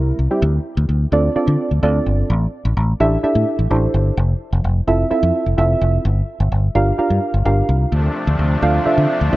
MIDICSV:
0, 0, Header, 1, 5, 480
1, 0, Start_track
1, 0, Key_signature, -1, "minor"
1, 0, Tempo, 468750
1, 434, Time_signature, 4, 2, 24, 8
1, 9589, End_track
2, 0, Start_track
2, 0, Title_t, "Synth stab"
2, 0, Program_c, 0, 62
2, 0, Note_on_c, 0, 55, 92
2, 0, Note_on_c, 0, 60, 84
2, 0, Note_on_c, 0, 64, 83
2, 0, Note_on_c, 0, 70, 98
2, 183, Note_off_c, 0, 55, 0
2, 184, Note_off_c, 0, 60, 0
2, 184, Note_off_c, 0, 64, 0
2, 185, Note_off_c, 0, 70, 0
2, 313, Note_on_c, 0, 55, 105
2, 314, Note_on_c, 0, 60, 96
2, 317, Note_on_c, 0, 64, 94
2, 318, Note_on_c, 0, 67, 110
2, 433, Note_off_c, 0, 55, 0
2, 434, Note_off_c, 0, 60, 0
2, 435, Note_off_c, 0, 64, 0
2, 436, Note_off_c, 0, 67, 0
2, 1153, Note_on_c, 0, 60, 99
2, 1154, Note_on_c, 0, 62, 91
2, 1155, Note_on_c, 0, 65, 88
2, 1156, Note_on_c, 0, 69, 88
2, 1158, Note_on_c, 0, 74, 105
2, 1328, Note_off_c, 0, 60, 0
2, 1329, Note_off_c, 0, 62, 0
2, 1329, Note_off_c, 0, 65, 0
2, 1329, Note_off_c, 0, 69, 0
2, 1330, Note_off_c, 0, 74, 0
2, 1390, Note_on_c, 0, 60, 96
2, 1391, Note_on_c, 0, 62, 91
2, 1391, Note_on_c, 0, 65, 88
2, 1393, Note_on_c, 0, 69, 91
2, 1395, Note_on_c, 0, 74, 104
2, 1741, Note_off_c, 0, 60, 0
2, 1741, Note_off_c, 0, 62, 0
2, 1741, Note_off_c, 0, 65, 0
2, 1742, Note_off_c, 0, 69, 0
2, 1743, Note_off_c, 0, 74, 0
2, 1870, Note_on_c, 0, 60, 89
2, 1872, Note_on_c, 0, 62, 82
2, 1873, Note_on_c, 0, 69, 84
2, 1874, Note_on_c, 0, 65, 85
2, 1876, Note_on_c, 0, 74, 100
2, 2352, Note_off_c, 0, 60, 0
2, 2353, Note_off_c, 0, 62, 0
2, 2353, Note_off_c, 0, 69, 0
2, 2354, Note_off_c, 0, 65, 0
2, 2355, Note_off_c, 0, 74, 0
2, 3071, Note_on_c, 0, 62, 98
2, 3073, Note_on_c, 0, 64, 93
2, 3073, Note_on_c, 0, 67, 90
2, 3075, Note_on_c, 0, 69, 89
2, 3076, Note_on_c, 0, 76, 109
2, 3247, Note_off_c, 0, 62, 0
2, 3248, Note_off_c, 0, 64, 0
2, 3248, Note_off_c, 0, 67, 0
2, 3249, Note_off_c, 0, 69, 0
2, 3249, Note_off_c, 0, 76, 0
2, 3309, Note_on_c, 0, 62, 103
2, 3310, Note_on_c, 0, 64, 88
2, 3312, Note_on_c, 0, 67, 90
2, 3313, Note_on_c, 0, 69, 86
2, 3314, Note_on_c, 0, 76, 107
2, 3660, Note_off_c, 0, 62, 0
2, 3661, Note_off_c, 0, 64, 0
2, 3662, Note_off_c, 0, 67, 0
2, 3662, Note_off_c, 0, 69, 0
2, 3663, Note_off_c, 0, 76, 0
2, 3790, Note_on_c, 0, 64, 80
2, 3791, Note_on_c, 0, 62, 93
2, 3793, Note_on_c, 0, 67, 80
2, 3794, Note_on_c, 0, 69, 82
2, 3795, Note_on_c, 0, 72, 99
2, 4272, Note_off_c, 0, 64, 0
2, 4273, Note_off_c, 0, 62, 0
2, 4273, Note_off_c, 0, 67, 0
2, 4274, Note_off_c, 0, 69, 0
2, 4275, Note_off_c, 0, 72, 0
2, 4991, Note_on_c, 0, 60, 96
2, 4991, Note_on_c, 0, 64, 84
2, 4993, Note_on_c, 0, 65, 88
2, 4994, Note_on_c, 0, 69, 92
2, 4995, Note_on_c, 0, 76, 108
2, 5167, Note_off_c, 0, 60, 0
2, 5167, Note_off_c, 0, 64, 0
2, 5168, Note_off_c, 0, 65, 0
2, 5168, Note_off_c, 0, 69, 0
2, 5169, Note_off_c, 0, 76, 0
2, 5226, Note_on_c, 0, 60, 93
2, 5228, Note_on_c, 0, 64, 93
2, 5229, Note_on_c, 0, 65, 86
2, 5232, Note_on_c, 0, 69, 89
2, 5232, Note_on_c, 0, 76, 109
2, 5579, Note_off_c, 0, 60, 0
2, 5580, Note_off_c, 0, 64, 0
2, 5580, Note_off_c, 0, 65, 0
2, 5582, Note_off_c, 0, 69, 0
2, 5582, Note_off_c, 0, 76, 0
2, 5708, Note_on_c, 0, 60, 93
2, 5709, Note_on_c, 0, 64, 83
2, 5711, Note_on_c, 0, 65, 83
2, 5713, Note_on_c, 0, 69, 81
2, 5713, Note_on_c, 0, 76, 101
2, 6191, Note_off_c, 0, 60, 0
2, 6191, Note_off_c, 0, 64, 0
2, 6192, Note_off_c, 0, 65, 0
2, 6193, Note_off_c, 0, 69, 0
2, 6194, Note_off_c, 0, 76, 0
2, 6911, Note_on_c, 0, 62, 95
2, 6911, Note_on_c, 0, 65, 92
2, 6913, Note_on_c, 0, 67, 89
2, 6914, Note_on_c, 0, 70, 85
2, 6915, Note_on_c, 0, 77, 111
2, 7087, Note_off_c, 0, 62, 0
2, 7087, Note_off_c, 0, 65, 0
2, 7088, Note_off_c, 0, 67, 0
2, 7089, Note_off_c, 0, 70, 0
2, 7089, Note_off_c, 0, 77, 0
2, 7149, Note_on_c, 0, 62, 96
2, 7150, Note_on_c, 0, 65, 90
2, 7151, Note_on_c, 0, 67, 88
2, 7153, Note_on_c, 0, 70, 89
2, 7156, Note_on_c, 0, 77, 103
2, 7500, Note_off_c, 0, 62, 0
2, 7501, Note_off_c, 0, 65, 0
2, 7501, Note_off_c, 0, 67, 0
2, 7502, Note_off_c, 0, 70, 0
2, 7504, Note_off_c, 0, 77, 0
2, 7629, Note_on_c, 0, 62, 85
2, 7630, Note_on_c, 0, 65, 78
2, 7633, Note_on_c, 0, 67, 81
2, 7633, Note_on_c, 0, 70, 81
2, 7634, Note_on_c, 0, 77, 97
2, 8112, Note_off_c, 0, 62, 0
2, 8112, Note_off_c, 0, 65, 0
2, 8113, Note_off_c, 0, 67, 0
2, 8113, Note_off_c, 0, 70, 0
2, 8114, Note_off_c, 0, 77, 0
2, 8830, Note_on_c, 0, 62, 96
2, 8830, Note_on_c, 0, 65, 88
2, 8832, Note_on_c, 0, 69, 89
2, 8834, Note_on_c, 0, 72, 89
2, 8835, Note_on_c, 0, 77, 106
2, 9006, Note_off_c, 0, 62, 0
2, 9006, Note_off_c, 0, 65, 0
2, 9007, Note_off_c, 0, 69, 0
2, 9008, Note_off_c, 0, 72, 0
2, 9009, Note_off_c, 0, 77, 0
2, 9068, Note_on_c, 0, 62, 95
2, 9070, Note_on_c, 0, 65, 92
2, 9070, Note_on_c, 0, 69, 91
2, 9072, Note_on_c, 0, 72, 90
2, 9073, Note_on_c, 0, 76, 108
2, 9420, Note_off_c, 0, 62, 0
2, 9421, Note_off_c, 0, 65, 0
2, 9421, Note_off_c, 0, 69, 0
2, 9422, Note_off_c, 0, 72, 0
2, 9422, Note_off_c, 0, 76, 0
2, 9548, Note_on_c, 0, 65, 79
2, 9549, Note_on_c, 0, 62, 89
2, 9550, Note_on_c, 0, 69, 82
2, 9550, Note_on_c, 0, 72, 83
2, 9552, Note_on_c, 0, 76, 93
2, 9589, Note_off_c, 0, 62, 0
2, 9589, Note_off_c, 0, 65, 0
2, 9589, Note_off_c, 0, 69, 0
2, 9589, Note_off_c, 0, 72, 0
2, 9589, Note_off_c, 0, 76, 0
2, 9589, End_track
3, 0, Start_track
3, 0, Title_t, "Supersaw synth"
3, 0, Program_c, 1, 81
3, 8117, Note_on_c, 1, 48, 79
3, 8117, Note_on_c, 1, 57, 72
3, 8117, Note_on_c, 1, 62, 86
3, 8118, Note_on_c, 1, 53, 71
3, 9589, Note_off_c, 1, 48, 0
3, 9589, Note_off_c, 1, 53, 0
3, 9589, Note_off_c, 1, 57, 0
3, 9589, Note_off_c, 1, 62, 0
3, 9589, End_track
4, 0, Start_track
4, 0, Title_t, "Fingered electric bass"
4, 0, Program_c, 2, 33
4, 0, Note_on_c, 2, 36, 93
4, 112, Note_off_c, 2, 36, 0
4, 193, Note_on_c, 2, 36, 93
4, 273, Note_off_c, 2, 36, 0
4, 433, Note_on_c, 2, 38, 115
4, 592, Note_off_c, 2, 38, 0
4, 792, Note_on_c, 2, 38, 108
4, 872, Note_off_c, 2, 38, 0
4, 911, Note_on_c, 2, 38, 94
4, 1071, Note_off_c, 2, 38, 0
4, 1150, Note_on_c, 2, 38, 104
4, 1310, Note_off_c, 2, 38, 0
4, 1512, Note_on_c, 2, 50, 110
4, 1592, Note_off_c, 2, 50, 0
4, 1753, Note_on_c, 2, 38, 85
4, 1833, Note_off_c, 2, 38, 0
4, 1872, Note_on_c, 2, 38, 103
4, 2031, Note_off_c, 2, 38, 0
4, 2113, Note_on_c, 2, 31, 98
4, 2272, Note_off_c, 2, 31, 0
4, 2353, Note_on_c, 2, 33, 119
4, 2512, Note_off_c, 2, 33, 0
4, 2712, Note_on_c, 2, 33, 105
4, 2792, Note_off_c, 2, 33, 0
4, 2833, Note_on_c, 2, 33, 107
4, 2992, Note_off_c, 2, 33, 0
4, 3073, Note_on_c, 2, 33, 108
4, 3232, Note_off_c, 2, 33, 0
4, 3432, Note_on_c, 2, 45, 101
4, 3512, Note_off_c, 2, 45, 0
4, 3672, Note_on_c, 2, 33, 88
4, 3752, Note_off_c, 2, 33, 0
4, 3793, Note_on_c, 2, 33, 101
4, 3952, Note_off_c, 2, 33, 0
4, 4034, Note_on_c, 2, 31, 96
4, 4193, Note_off_c, 2, 31, 0
4, 4273, Note_on_c, 2, 29, 116
4, 4432, Note_off_c, 2, 29, 0
4, 4634, Note_on_c, 2, 29, 98
4, 4714, Note_off_c, 2, 29, 0
4, 4754, Note_on_c, 2, 29, 99
4, 4913, Note_off_c, 2, 29, 0
4, 4993, Note_on_c, 2, 29, 93
4, 5152, Note_off_c, 2, 29, 0
4, 5353, Note_on_c, 2, 41, 100
4, 5433, Note_off_c, 2, 41, 0
4, 5594, Note_on_c, 2, 29, 88
4, 5673, Note_off_c, 2, 29, 0
4, 5715, Note_on_c, 2, 29, 103
4, 5873, Note_off_c, 2, 29, 0
4, 5954, Note_on_c, 2, 29, 99
4, 6113, Note_off_c, 2, 29, 0
4, 6193, Note_on_c, 2, 31, 116
4, 6352, Note_off_c, 2, 31, 0
4, 6554, Note_on_c, 2, 31, 102
4, 6633, Note_off_c, 2, 31, 0
4, 6673, Note_on_c, 2, 31, 96
4, 6832, Note_off_c, 2, 31, 0
4, 6913, Note_on_c, 2, 31, 97
4, 7072, Note_off_c, 2, 31, 0
4, 7273, Note_on_c, 2, 43, 89
4, 7353, Note_off_c, 2, 43, 0
4, 7514, Note_on_c, 2, 31, 91
4, 7593, Note_off_c, 2, 31, 0
4, 7632, Note_on_c, 2, 31, 107
4, 7792, Note_off_c, 2, 31, 0
4, 7872, Note_on_c, 2, 36, 97
4, 8032, Note_off_c, 2, 36, 0
4, 8112, Note_on_c, 2, 38, 114
4, 8271, Note_off_c, 2, 38, 0
4, 8471, Note_on_c, 2, 38, 107
4, 8551, Note_off_c, 2, 38, 0
4, 8591, Note_on_c, 2, 38, 99
4, 8751, Note_off_c, 2, 38, 0
4, 8832, Note_on_c, 2, 38, 107
4, 8992, Note_off_c, 2, 38, 0
4, 9193, Note_on_c, 2, 50, 105
4, 9273, Note_off_c, 2, 50, 0
4, 9433, Note_on_c, 2, 38, 94
4, 9513, Note_off_c, 2, 38, 0
4, 9553, Note_on_c, 2, 38, 101
4, 9589, Note_off_c, 2, 38, 0
4, 9589, End_track
5, 0, Start_track
5, 0, Title_t, "Muted fingered electric bass strokes"
5, 1393, Note_on_c, 9, 29, 50
5, 1495, Note_off_c, 9, 29, 0
5, 3313, Note_on_c, 9, 29, 52
5, 3416, Note_off_c, 9, 29, 0
5, 5233, Note_on_c, 9, 29, 51
5, 5335, Note_off_c, 9, 29, 0
5, 7154, Note_on_c, 9, 29, 50
5, 7257, Note_off_c, 9, 29, 0
5, 9074, Note_on_c, 9, 29, 51
5, 9177, Note_off_c, 9, 29, 0
5, 9589, End_track
0, 0, End_of_file